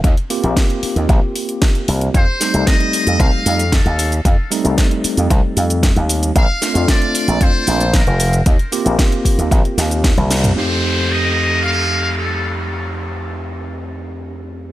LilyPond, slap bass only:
\new Staff \with { instrumentName = "Slap bass" } { \clef bass \time 4/4 \key f \mixolydian \tempo 4 = 114 ees,16 r8 bes,,16 r8. ees,16 bes,,16 r4 r16 c,16 r16 | f,16 r8 c,16 r8. f,16 c,16 r16 f,8. ees,8. | f,16 r8 c,16 r8. f,16 c,16 r16 f,8. ees,8. | bes,,16 r8 f,16 r8. bes,,16 f,16 r16 bes,,8. f,,8. |
ees,16 r8 bes,,16 r8. ees,16 bes,,16 r16 ees,8. c,8. | f,1~ | f,1 | }